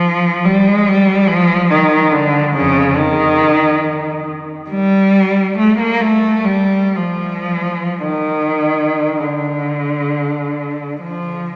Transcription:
cello
Already playing: F3
0.44 G3
0.67 G#3
0.88 G3
1.27 F3
1.70 D#3
2.10 D3
2.57 F2 C#3
2.96 D#3
4.70 G3
5.58 A3
5.79 A#3
6.01 A3
6.45 G3
6.97 F3
8.05 D#3
9.19 D3
11.01 F3

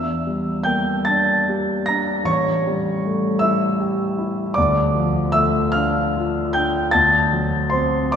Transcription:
grand piano
Already playing: E2 E5 E6
0.27 G3
0.63 A#3 G5 G6
1.05 D4 A5 A6
1.49 G4
1.86 D4 A#5 A#6
2.24 A1 C#5 C#6
2.67 G3
3.05 A3
3.39 E4 E5 E6
3.80 G4
4.19 E4
4.54 D2 D5 D6
4.95 F3
5.32 A3 E5 E6
5.72 D4 F5 F6
6.16 F4
6.53 D4 G5 G6
6.91 D2 A5 A6
7.33 F#3
7.70 C4 C5 C6
8.12 D6

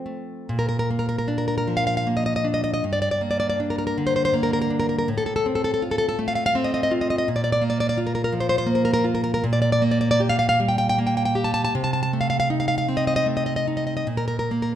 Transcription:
nylon-string guitar
Already playing: F3 C4
0.06 A3
0.49 A#2
0.59 A#4
0.69 A#4
0.79 A#4
0.90 A#3
0.99 A#4
1.09 A#4
1.18 A#4
1.28 D4
1.38 A#4
1.48 A#4
1.58 A#4
1.67 F3
1.77 F5
1.87 F5
1.97 F5
2.07 A#3
2.17 D#5
2.26 D#5
2.36 D#5
2.44 D4
2.54 D#5
2.64 D#5
2.74 D#5
2.84 G2
2.93 D5
3.02 D5
3.11 D5
3.21 A#3
3.31 D5
3.40 D5
3.50 D5
3.60 D4
3.70 A#4
3.78 A#4
3.87 A#4
3.98 D3
4.07 C5
4.16 C5
4.25 C5
4.34 A#3
4.43 A#4
4.53 A#4
4.62 A#4
4.70 D4
4.80 A#4
4.89 A#4
4.99 A#4
5.08 A2
5.18 A4
5.26 A4
5.36 A4
5.46 C4
5.55 A4
5.64 A4
5.74 A4
5.82 F4
5.91 A4
5.98 A4
6.09 A4
6.19 A3
6.28 F5
6.35 F5
6.46 F5
6.55 C4
6.64 D#5
6.74 D#5
6.83 D#5
6.91 F4
7.01 D#5
7.10 D#5
7.18 D#5
7.28 A#2
7.36 D5
7.44 D5
7.52 D5
7.61 A#3
7.70 D5
7.80 D5
7.89 D5
7.98 F4
8.07 A#4
8.15 A#4
8.24 A#4
8.32 F3
8.40 C5
8.49 C5
8.58 C5
8.66 A#3
8.75 A#4
8.85 A#4
8.94 A#4
9.04 F4
9.15 A#4
9.24 A#4
9.34 A#4
9.44 A#2
9.53 D5
9.62 D5
9.72 D5
9.82 A#3
9.91 D5
10.01 D5
10.11 D5
10.20 G4
10.29 F5
10.39 F5
10.49 F5
10.60 G3
10.69 G5
10.78 G5
10.89 G5
10.98 A#3
11.07 G5
11.17 G5
11.25 G5
11.35 G4
11.44 A5
11.54 A5
11.65 A5
11.75 C3
11.84 A5
11.93 A5
12.03 A5
12.13 A3
12.21 F5
12.30 F5
12.40 F5
12.50 D#4
12.60 F5
12.68 F5
12.78 F5
12.88 C4
12.97 D#5
13.07 D#5
13.16 D#5
13.26 A3
13.37 D#5
13.46 D#5
13.56 D#5
13.67 D#4
13.77 D#5
13.87 D#5
13.97 D#5
14.07 A#2
14.17 A#4
14.28 A#4
14.39 A#4
14.51 A#3
14.62 A#4

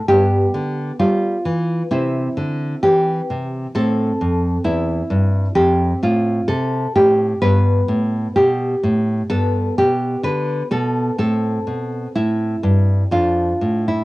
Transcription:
nylon-string guitar
0.08 G2 B3 G4
0.54 D3
0.99 G3 F4
1.45 E3
1.91 C3 C4 E4
2.37 D3
2.83 E3 G4
3.30 C3
3.75 A2 C4 A4
4.21 F2
4.64 E2 E4
5.10 G2
5.55 F2 C4 G4
6.03 A2 F4
6.48 C3 A4
6.96 A2 G4
7.42 G2 B3 B4
7.88 A2
8.36 B2 G4
8.83 A2
9.30 G2 B3 A4
9.78 B2 G4
10.23 D3 B4
10.71 B2 A4
11.18 A2 C4 A4
11.67 B2
12.15 A2 E4
12.63 G2
13.11 F2 D4 F4
13.61 A2
13.88 E4

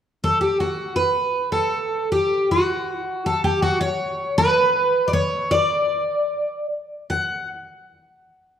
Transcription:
twelve-string acoustic guitar
0.24 A4
0.41 G4
0.60 F#4
0.96 B4
1.52 A4
2.12 G4
2.51 F#4
3.26 A4
3.44 G4
3.62 F#4
3.81 C#5
4.38 B4
5.08 D5
5.13 C#5
5.51 D5
7.10 F#5

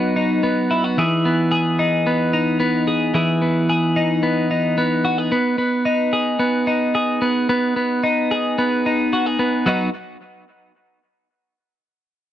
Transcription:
clean electric guitar
Already playing: F#3 B3 D#4 F#4
0.16 D#4
0.43 B3
0.71 E4
0.84 F#4
0.98 E3 G#4
1.25 B3
1.52 G#4
1.79 D#4
2.07 B3
2.33 D#4
2.60 B3
2.88 G#4
3.14 E3 G#4
3.42 B3
3.69 G#4
3.96 D#4
4.23 B3
4.51 D#4
4.78 B3
5.05 F#4
5.18 G#4
5.32 B3
5.58 B3
5.85 D#4
6.13 G#4
6.39 B3
6.67 D#4
6.95 G#4
7.22 B3
7.49 B3
7.76 B3
8.04 D#4
8.31 G#4
8.58 B3
8.86 D#4
9.13 F#4
9.26 G#4
9.39 B3
9.66 F#3 B3 D#4 F#4

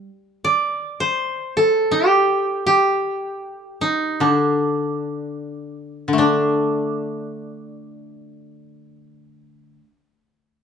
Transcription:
koto
0.45 D5
1.00 C5
1.57 A4
1.91 G4
2.66 G4
3.81 D#4
4.20 D3 D4
6.08 D3
6.13 A3
6.18 D4

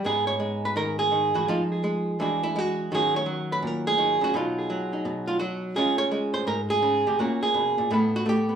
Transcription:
hollow-body jazz guitar
0.04 G#2 G#3 B3 G#4
0.27 C#5
0.40 G#3
0.65 B4
0.76 D#3 A#4
0.99 G#4
1.11 D#3
1.34 E3 F#4
1.48 F3 G#3 D#4 F4
1.72 G#4
1.84 G#3
2.20 E3 G#3 D4 F#4 G#4
2.43 E4
2.56 G#3 F#4
2.92 D#3 F#3 C#4 F#4 G#4
3.16 C#5
3.26 F#3
3.52 B4
3.62 A#2
3.67 A#4
3.87 G#4
3.98 D#3
4.21 C#3 F#4
4.34 B2 F#3 D#4 F4
4.58 G#4
4.70 F#3
4.93 D#4
5.05 B2
5.28 F4
5.40 F#3 F#4
5.76 C#3 G#3 C#4 F4 G#4
5.98 C#5
6.11 G#3
6.34 C5
6.47 G#2 A#4
6.70 G#4
6.82 C#3
7.07 C3 G4
7.19 A#2 A#3 C#4 F#4
7.43 G#4
7.54 B2
7.78 A#2
7.91 A2 A3 B3 E4 B4
8.16 F#4
8.26 A3 G4
8.49 B3

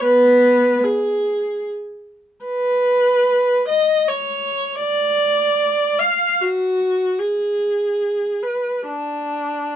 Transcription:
viola
0.03 B3 B4
0.84 G#4
2.45 B4
3.68 D#5
4.08 C#5
4.81 D5
5.99 F5
6.41 F#4
7.19 G#4
8.43 B4
8.87 D4

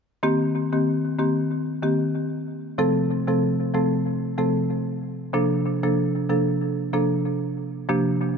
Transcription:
marimba
0.23 D#3 A#3 C4 G4
0.72 D#3 A#3 C4 G4
1.19 D#3 A#3 C4 G4
1.82 D#3 A#3 C4 G4
2.78 C3 F3 A3 C4 A4
3.28 C3 F3 A3 C4 A4
3.74 C3 F3 A3 C4 A4
4.38 C3 F3 A3 C4 A4
5.33 C3 F3 A#3 D4 A4
5.83 C3 F3 A#3 D4 A4
6.29 C3 F3 A#3 D4 A4
6.93 C3 F3 A#3 D4 A4
7.89 C3 F3 A#3 D4 G4

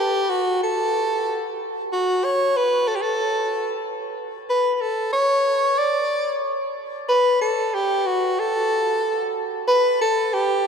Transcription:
soprano saxophone
Already playing: G4
0.30 F#4
0.63 A4
1.93 F#4
2.24 C#5
2.56 B4
2.88 A4
2.96 G4
3.02 A4
4.50 B4
4.75 B4
4.81 A4
5.13 C#5
5.78 D5
7.09 B4
7.41 A4
7.74 G4
8.06 F#4
8.40 A4
9.68 B4
10.01 A4
10.34 G4

